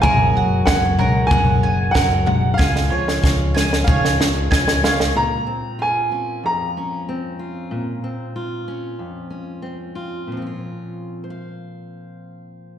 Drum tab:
SD |----o-------o---|oo-oo-oo-oo-oooo|----------------|----------------|
FT |o-----o-o-----o-|----------------|----------------|----------------|
BD |o---o---o---o---|o---o---o---o---|----------------|----------------|

SD |----------------|
FT |----------------|
BD |----------------|